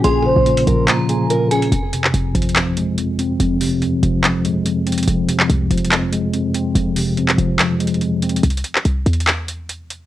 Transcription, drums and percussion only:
0.04 closed hi-hat
0.46 closed hi-hat
0.57 closed hi-hat
0.67 closed hi-hat
0.88 clap, closed hi-hat
1.09 closed hi-hat
1.30 closed hi-hat
1.51 closed hi-hat, open hi-hat
1.62 closed hi-hat
1.72 closed hi-hat
1.93 closed hi-hat
2.04 clap
2.14 closed hi-hat
2.35 closed hi-hat
2.42 closed hi-hat
2.49 closed hi-hat
2.56 clap, closed hi-hat
2.77 closed hi-hat
2.98 closed hi-hat
3.19 closed hi-hat
3.40 closed hi-hat
3.61 open hi-hat
3.82 closed hi-hat
4.03 closed hi-hat
4.24 clap, closed hi-hat
4.45 closed hi-hat
4.66 closed hi-hat
4.87 closed hi-hat
4.92 closed hi-hat
4.98 closed hi-hat
5.03 closed hi-hat
5.08 closed hi-hat
5.29 closed hi-hat
5.40 clap
5.50 closed hi-hat
5.71 closed hi-hat
5.78 closed hi-hat
5.85 closed hi-hat
5.92 clap, closed hi-hat
6.13 closed hi-hat
6.34 closed hi-hat
6.55 closed hi-hat
6.76 closed hi-hat
6.96 open hi-hat
7.17 closed hi-hat
7.29 clap, closed hi-hat
7.39 closed hi-hat
7.59 clap, closed hi-hat
7.80 closed hi-hat
7.87 closed hi-hat
7.94 closed hi-hat
8.01 closed hi-hat
8.22 closed hi-hat
8.29 closed hi-hat
8.36 closed hi-hat
8.43 closed hi-hat
8.50 closed hi-hat
8.57 closed hi-hat
8.64 closed hi-hat
8.75 clap
8.85 closed hi-hat
9.06 closed hi-hat
9.13 closed hi-hat
9.20 closed hi-hat
9.27 clap, closed hi-hat
9.48 closed hi-hat
9.69 closed hi-hat
9.90 closed hi-hat

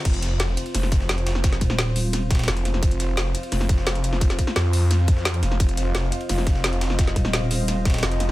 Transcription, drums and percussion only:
0.05 kick, closed hi-hat, crash, ride
0.14 closed hi-hat
0.22 snare, closed hi-hat, ride
0.40 snare, closed hi-hat, ride
0.57 closed hi-hat, ride
0.66 ride
0.75 snare, closed hi-hat, open hi-hat
0.83 snare
0.92 kick, snare, closed hi-hat, ride
1.01 snare
1.09 snare, closed hi-hat, ride
1.18 snare, closed hi-hat
1.27 snare, closed hi-hat, ride
1.35 snare
1.44 kick, snare, closed hi-hat, ride
1.52 snare, closed hi-hat
1.61 kick, closed hi-hat, ride
1.70 snare
1.79 snare, closed hi-hat, ride
1.96 open hi-hat, ride
2.13 snare, closed hi-hat, ride
2.31 kick, snare, closed hi-hat, ride
2.35 snare, ride
2.39 snare, ride
2.44 snare, ride
2.48 snare, closed hi-hat, ride
2.57 closed hi-hat, ride
2.65 snare, closed hi-hat, ride
2.74 snare
2.83 kick, closed hi-hat, ride
2.91 closed hi-hat
3.00 snare, closed hi-hat, ride
3.17 snare, closed hi-hat, ride
3.35 closed hi-hat, ride
3.43 ride
3.52 snare, closed hi-hat, open hi-hat
3.61 snare
3.69 kick, snare, closed hi-hat, ride
3.78 snare
3.87 snare, closed hi-hat, ride
3.95 snare, closed hi-hat
4.04 closed hi-hat, ride
4.13 snare
4.21 kick, closed hi-hat, ride
4.30 snare, closed hi-hat
4.39 kick, closed hi-hat, ride
4.47 snare
4.56 snare, closed hi-hat, ride
4.73 open hi-hat, ride
4.91 snare, closed hi-hat, ride
5.08 kick, closed hi-hat, ride
5.17 snare
5.25 snare, closed hi-hat, ride
5.34 closed hi-hat, ride
5.43 snare, closed hi-hat, ride
5.51 snare
5.60 kick, closed hi-hat, ride
5.69 closed hi-hat
5.77 snare, closed hi-hat, ride
5.95 snare, closed hi-hat, ride
6.12 closed hi-hat, ride
6.21 ride
6.29 snare, closed hi-hat, open hi-hat
6.38 snare
6.47 kick, snare, closed hi-hat, ride
6.55 snare
6.64 snare, closed hi-hat, ride
6.73 snare, closed hi-hat
6.81 snare, closed hi-hat, ride
6.90 snare
6.99 kick, snare, closed hi-hat, ride
7.07 snare, closed hi-hat
7.16 kick, closed hi-hat, ride
7.25 snare
7.33 snare, closed hi-hat, ride
7.51 open hi-hat, ride
7.68 snare, closed hi-hat, ride
7.85 kick, snare, closed hi-hat, ride
7.90 snare, ride
7.94 snare, ride
7.98 snare, ride
8.03 snare, closed hi-hat, ride
8.12 closed hi-hat, ride
8.20 snare, closed hi-hat, ride

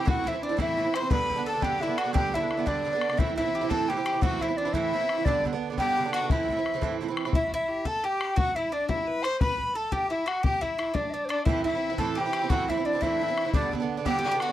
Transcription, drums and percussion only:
0.07 bodhran
0.26 bodhran
0.59 bodhran
0.94 bodhran
1.11 bodhran
1.30 bodhran
1.62 bodhran
1.98 bodhran
2.15 bodhran
2.34 bodhran
2.51 bodhran
2.67 bodhran
3.01 bodhran
3.10 bodhran
3.19 bodhran
3.38 bodhran
3.71 bodhran
4.06 bodhran
4.22 bodhran
4.41 bodhran
4.74 bodhran
5.09 bodhran
5.26 bodhran
5.45 bodhran
5.78 bodhran
6.13 bodhran
6.30 bodhran
6.49 bodhran
6.66 bodhran
6.82 bodhran
7.17 bodhran
7.25 bodhran
7.33 bodhran
7.52 bodhran
7.85 bodhran
8.21 bodhran
8.37 bodhran
8.89 bodhran
9.24 bodhran
9.41 bodhran
9.60 bodhran
9.92 bodhran
10.28 bodhran
10.44 bodhran
10.62 bodhran
10.79 bodhran
10.95 bodhran
11.30 bodhran
11.46 bodhran
11.65 bodhran
11.98 bodhran
12.33 bodhran
12.50 bodhran
12.69 bodhran
13.02 bodhran
13.38 bodhran
13.54 bodhran
13.73 bodhran
14.06 bodhran
14.40 bodhran

